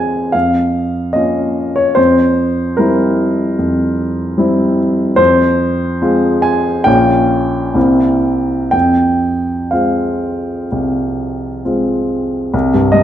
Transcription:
Already playing: F2 G#3 C4 F4 C5 G#5
0.32 F2 F5
1.13 A#3 C#4 F4 D#5
1.76 C#5
1.95 F2 C5
2.77 G3 C4 E4 A#4
3.59 F2
4.38 G3 C4 E4
5.16 F2 C5
6.02 G#3 C4 F4
6.42 G#5
6.84 A#1 A#3 C#4 F4 G5
7.74 C2 A#3 C4 E4
8.71 F2 G5
9.71 G#3 C4 F4 F5
10.72 C2
11.65 G#3 C4 F4
12.54 C2
12.74 G2
12.92 G3 D#5

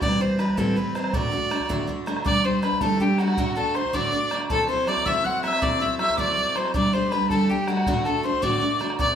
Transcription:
0.01 A2 E3 G3 C4 G4 D5, bodhran
0.20 E3 G3 C4 G4 C5
0.39 E3 G3 C4 G4 B4, bodhran
0.49 bodhran
0.57 A2 E3 G3 C4 G4 A4, bodhran
0.76 E3 G3 C4 G4 B4, bodhran
0.95 E3 G3 C4 G4 C5, bodhran
1.04 bodhran
1.13 D2 A2 D3 A3 D4 F#4 D5, bodhran
1.32 D3 A3 D4 F#4
1.50 D3 A3 D4 F#4, bodhran
1.60 bodhran
1.69 D2 A2 D3 A3 D4 F#4, bodhran
1.87 D3 A3 D4 F#4, bodhran
2.06 D3 A3 D4 F#4, bodhran
2.17 bodhran
2.25 G3 A3 D4 G4 D5 D6, bodhran
2.44 G3 A3 D4 G4 C5 C6
2.62 G3 A3 D4 G4 B4 B5, bodhran
2.72 bodhran
2.81 G3 A3 D4 G4 A4 A5, bodhran
3.00 G3 A3 D4 G4 G5, bodhran
3.18 G3 A3 D4 F#4 G4 F#5, bodhran
3.28 bodhran
3.37 D2 A2 D3 A3 D4 F#4, bodhran
3.56 D3 A3 D4 F#4 A4 A5
3.75 D3 A3 D4 F#4 C5 C6, bodhran
3.85 bodhran
3.93 D2 A2 D3 A3 D4 F#4 D5 D6, bodhran
4.12 D3 A3 D4 F#4, bodhran
4.31 D3 A3 D4 F#4, bodhran
4.41 bodhran
4.50 F#3 C4 E4 A4 A5, bodhran
4.68 F#3 C4 E4 A4 C5 C6
4.87 F#3 C4 E4 A4 D5 D6, bodhran
4.97 bodhran
5.06 F#3 C4 E4 A4 E5 E6, bodhran
5.24 F#3 C4 E4 A4 F#5 F#6, bodhran
5.43 F#3 C4 E4 A4 E5 F#6, bodhran
5.48 E6
5.53 bodhran
5.62 F#3 C4 E4 A4 D5 D6, bodhran
5.80 F#3 C4 E4 A4 E5 E6
5.99 F#3 C4 E4 A4 E5 E6, bodhran
6.09 bodhran
6.17 F#3 C4 E4 A4 D5 D6, bodhran
6.37 F#3 C4 E4 A4, bodhran
6.55 F#3 C4 E4 A4 C5 C6, bodhran
6.65 bodhran
6.74 G3 A3 D4 G4 D5 D6, bodhran
6.93 G3 A3 D4 G4 C5 C6
7.11 G3 A3 D4 G4 B4 B5, bodhran
7.22 bodhran
7.30 G3 A3 D4 G4 A4 A5, bodhran
7.49 G3 A3 D4 G4 G5, bodhran
7.68 G3 A3 D4 F#4 G4 F#5, bodhran
7.77 bodhran
7.86 D2 A2 D3 A3 D4 F#4, bodhran
8.05 D3 A3 D4 F#4 A4 A5
8.23 D3 A3 D4 F#4 C5 C6
8.33 bodhran
8.42 D2 A2 D3 A3 D4 F#4 D5 D6, bodhran
8.61 D3 A3 D4 F#4, bodhran
8.79 D3 A3 D4 F#4, bodhran
8.90 bodhran
8.99 F#3 C4 E4 A4 D5 D6, bodhran

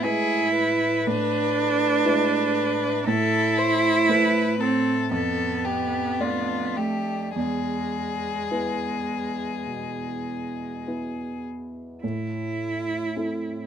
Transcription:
Already playing: A2
0.02 G#3 E4 G#4 B4
0.55 B4
1.06 A2 D4
2.05 G#3 E4 B4
3.07 A2 E4 A4
3.58 C5
4.09 A3 E4 B4 C5
4.60 C4 A4
5.11 F2 B3 A4
5.65 G4
6.20 A3 D4 F4 D5
6.77 A3 G4
7.36 E2 G#3 G#4
8.51 B3 E4 B4
9.67 B2
10.87 B3 E4 B4
12.03 A2 E4
13.16 C4 E4 A4

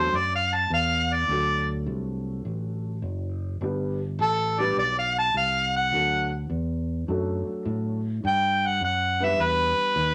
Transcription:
Already playing: E2 F#3 A3 D4 F#4 A4 C5
0.13 F#2 D5
0.35 F5
0.55 A5
0.70 E2 F5
1.13 D5
1.28 D2 F#3 A3 D4 F#4 A4
1.86 C2
2.45 A1
3.02 F#1
3.61 G1 G3 B3 D4 G4 B4
4.19 A1 A4
4.58 G3 B3 D4 G4 B4 D5
4.77 B1 D5
4.99 F5
5.19 A5
5.34 C2 F5
5.77 F#5
5.92 D2 F#3 A3 D4 F#4 A4
6.50 E2
7.08 F#2 F#3 A3 D4 F#4 A4
7.47 muted fingered electric bass stroke
7.66 A2
8.24 G2 G5
8.67 F#5
8.81 F#2 F#5
9.20 G3 B3 D4 G4 B4
9.25 E5
9.39 E2 B4
9.96 D#2

